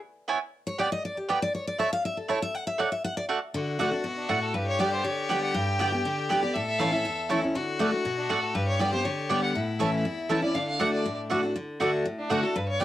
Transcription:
0.28 B3 E4 C#5 G#5
0.67 C#5
0.79 B3 G4 D5 G5
0.92 D#5
1.05 D5
1.17 G4
1.29 B3 G4 B4 D5 G5
1.43 D5
1.55 C#5
1.68 D5
1.78 A3 E4 C#5 E5 A5
1.93 F5
2.05 E5
2.17 A4
2.28 A3 E4 C#5 A5
2.42 E5
2.55 F#5
2.67 E5
2.78 A3 F#4 C#5 D5 F#5
2.92 E5
3.04 F#5
3.17 D5
3.29 A3 F#4 D5 F#5
3.54 D3 F#4
3.79 D3 A3 D4 F#4 D5 F#5
3.91 D4 F#4
4.04 B2
4.17 D4
4.29 A2 A3 F#4 D5 F#5
4.42 A4
4.54 G2 G4 B4
4.67 C#5
4.79 D3 G3 B3 G4 D5 G5
4.93 C5
5.04 D3 C#5
5.29 D3 G3 B3 G4 D5 G5
5.42 F#5
5.54 G2 G5
5.79 D3 G3 B3 G4 D5 G5
5.92 B3 G4
6.05 D3
6.29 D3 G3 B3 G4 D5 G5
6.42 B3 G4 D5
6.54 A2 A4 E5
6.67 E5
6.79 E3 A3 C#4 E4 C#5 F5 A5
6.92 C#4 E4 E5
7.05 E2
7.29 E3 A3 C#4 E4 C#5 A5
7.42 C#4 E4
7.55 D3 F#4
7.79 D3 A3 D4 F#4 D5 F#5
7.92 D4 F#4
8.05 B2
8.18 D4
8.29 A2 A3 F#4 D5 F#5
8.43 A4
8.55 G2 G4 B4
8.68 C#5
8.79 D3 G3 B3 G4 D5 G5
8.92 B3 G4 C5
9.04 D3 C#5
9.29 D3 G3 B3 G4 D5 G5
9.42 F#5
9.55 A2 E4
9.79 E3 A3 C#4 E4 C#5 A5
10.05 E2
10.29 E3 A3 C#4 E4 C#5 A5
10.42 C#4 E4 D5
10.55 D3 D4 F5
10.68 F5
10.79 D3 A3 D4 F#4 D5 F#5
10.93 D5
11.05 A2
11.30 D3 A3 D4 F#4 D5 F#5
11.43 D4 F#4
11.55 D3
11.80 D3 A3 D4 F#4 D5 F#5
12.05 A2
12.19 D4
12.30 D3 A3 D4 F#4 D5 F#5
12.43 D4 F#4 A4
12.56 G2 B4
12.68 C#5
12.80 D3 G3 B3 G4 D5 G5

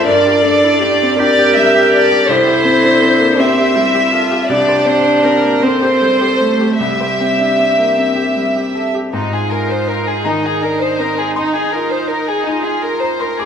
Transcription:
0.05 G2 D4 A#4 D5
0.26 G4
0.42 D4 A4
0.64 E4
0.79 D4 G4
1.02 C4
1.16 G4 A#4 D5
1.21 D4
1.39 G4
1.56 G3 E5
1.75 G4
1.94 A4 D5
2.11 G4
2.28 C2 E4 A4 C5
2.47 G4
2.64 C4
2.83 D4
3.01 C4
3.19 A#3
3.38 C4 G4 E5
3.57 G4
3.75 G3 E4
3.94 G4
4.11 F4 A4
4.31 G4
4.49 C2 D4 G4 D5
4.68 C5
4.86 C4 C5
5.05 D4
5.24 C4 A#4
5.43 A#3
5.62 C4 A4 C5
5.81 G4
6.01 G3
6.21 G4
6.40 A3 A4
6.60 G4
6.79 C2 G3 G4 E5
7.00 C5
7.20 C4
7.39 D4
7.59 C4
7.78 A#3
7.97 C4
8.16 G4
8.36 G3
8.56 G4
8.75 A4
8.94 G4
9.12 G#2 D#4 F4
9.33 G#4
9.51 A#4 G#5
9.69 C5
9.88 A#4
10.08 G#4
10.25 D#3 D#4 A#5
10.45 G#4
10.62 D4 A#4
10.81 C5
10.99 C4 A#4
11.18 G#4
11.36 D#4 C6
11.55 G#4
11.73 F4 A#4
11.91 C5
12.09 D#4 A#4
12.28 G#4
12.46 D#4 F4 G#5
12.64 G#4
12.83 A#4
13.00 C5 A#5
13.20 A#4 C6
13.39 G#4 D6

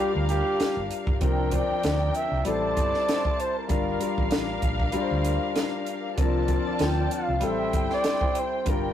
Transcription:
Already playing: G3 D4 F4 A#4 B4 C5 F5
0.00 G4
0.15 D2
0.29 G4, closed hi-hat
0.60 muted fingered electric bass stroke, snare, closed hi-hat
0.77 G1
0.91 closed hi-hat
1.07 G1, kick
1.20 C2 F3 C4 D4 A#4 G5, kick, closed hi-hat
1.51 F3 C4 D4 C5 D5, kick, closed hi-hat
1.70 muted fingered electric bass stroke
1.83 D2 D5, snare, closed hi-hat
2.15 E5, closed hi-hat
2.32 C2
2.45 A1 G3 C4 E4 A4 C5 D5 A5, closed hi-hat
2.77 G1, kick, closed hi-hat
2.94 snare
3.09 snare, closed hi-hat
3.25 kick
3.40 C5, closed hi-hat
3.58 A#4
3.68 G1 G3 D4 F4 A#4 F5, kick, closed hi-hat
4.00 G3 D4 F4 A#4, closed hi-hat
4.18 A1, kick
4.31 snare, closed hi-hat
4.62 A#1, kick, closed hi-hat
4.80 kick
4.92 G3 D4 F4 A#4, muted fingered electric bass stroke, closed hi-hat
5.02 C5
5.11 D2
5.25 closed hi-hat
5.56 snare, closed hi-hat
5.86 closed hi-hat
6.17 C2 F3 C4 D4 F4 A#4 D5 A5, kick, closed hi-hat
6.47 F3 C4 D4 A#4, kick, closed hi-hat
6.66 muted fingered electric bass stroke
6.74 A5
6.79 D2 G5, snare, closed hi-hat
7.11 F5, closed hi-hat
7.28 C2
7.41 A1 G3 C4 E4 A4 C5 G5, closed hi-hat
7.46 E5
7.73 G1, kick, closed hi-hat
7.90 D5, snare
8.04 snare, closed hi-hat
8.21 kick
8.35 C5, closed hi-hat
8.65 G1 G3 D4 F4 A#4 G5, kick, closed hi-hat
8.70 A#4

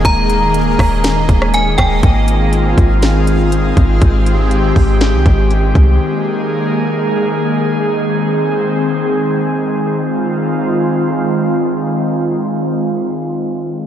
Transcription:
Already playing: D#3 G#3 A#3 G#4 D#5
0.05 D#1 A#5, kick, closed hi-hat
0.30 closed hi-hat
0.54 closed hi-hat
0.79 D#1, kick, cross-stick, open hi-hat
1.04 snare, closed hi-hat
1.29 D#1, kick, closed hi-hat
1.42 cross-stick
1.54 G#5, closed hi-hat
1.78 D#1 G5, kick, cross-stick, closed hi-hat
2.03 G#1 D#3 G#3 C4 F4 G#4 F5, kick, closed hi-hat
2.28 closed hi-hat
2.53 closed hi-hat
2.78 G#1, kick, closed hi-hat
3.02 snare, closed hi-hat
3.27 closed hi-hat
3.52 closed hi-hat
3.77 G#1, kick, closed hi-hat
4.02 G#1 G4, kick, closed hi-hat
4.26 closed hi-hat
4.51 closed hi-hat
4.76 G#1, kick, open hi-hat
5.01 snare, closed hi-hat
5.13 C2
5.26 G#1, kick, closed hi-hat
5.51 closed hi-hat
5.75 C2, kick, closed hi-hat
6.00 D#3 A#3 G#4
7.98 C4
9.97 D#3 G#3 C4 F4

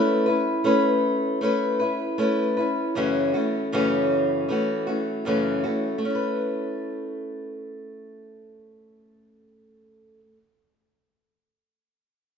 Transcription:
Already playing: A3 C#4 E4 B4
0.26 C#4 E4 B4
0.64 A3 C#4 E4 B4
1.41 A3 C#4 E4 B4
1.79 C#4 E4 B4
2.18 A3 C#4 E4 B4
2.57 C#4 E4 B4
2.95 F#2 C#3 E3 A3 C#4 F#4
3.34 E3 A3 C#4 F#4
3.72 F#2 C#3 E3 A3 C#4 F#4
4.49 E3 A3 C#4 F#4
4.87 E3 A3 C#4 F#4
5.25 F#2 C#3 E3 A3 C#4 F#4
5.64 E3 A3 C#4 F#4
5.98 A3
6.05 C#4
6.10 E4
6.15 B4

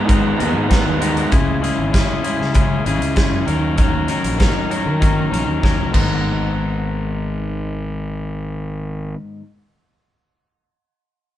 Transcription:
Already playing: G#2
0.05 G#2 D#3 G#3 B3 D#4 A#4, kick, closed hi-hat
0.37 D#2 G#2 D#3 G#3 B3 D#4 A#4, closed hi-hat
0.57 G#2
0.67 G#2 D#3 G#3 B3 D#4 A#4, kick, closed hi-hat
0.72 snare
0.87 D#2
0.99 G#2 D#3 G#3 B3 D#4 A#4, closed hi-hat
1.17 closed hi-hat
1.30 C#2 C#3 G#3 C#4 E4 G#4, kick, closed hi-hat
1.61 C#3 G#3 C#4 E4 G#4, closed hi-hat
1.78 G#1
1.91 C#3 G#3 C#4 E4 G#4, kick, snare, closed hi-hat
2.22 C#3 G#3 C#4 E4 G#4, closed hi-hat
2.41 C#3, snare
2.53 C#3 G#3 C#4 E4 G#4, kick, closed hi-hat
2.85 G#1 C#3 G#3 C#4 E4 G#4, closed hi-hat
3.01 C#2, closed hi-hat
3.16 C#3 G#3 C#4 E4 G#4, kick, snare, closed hi-hat
3.32 F#2
3.45 D#2 D#3 F#3 C#4 D#4 A#4, closed hi-hat
3.76 D#3 F#3 C#4 D#4 A#4, kick, closed hi-hat
4.07 D#3 F#3 C#4 D#4 A#4, closed hi-hat
4.24 A#1, closed hi-hat
4.37 D#3 F#3 C#4 D#4 A#4, kick, snare, closed hi-hat
4.69 D#3 F#3 C#4 D#4 A#4, closed hi-hat
4.86 D#3
5.00 D#3 F#3 C#4 D#4 A#4, kick, closed hi-hat
5.30 A#1 D#3 F#3 C#4 D#4 A#4, closed hi-hat
5.48 D#2
5.62 D#2 D#3 F#3 C#4 D#4 A#4, kick, snare
5.80 C#2
5.91 G#1 G#2 D#3 G#3 B3 D#4, kick, crash
5.95 A#4

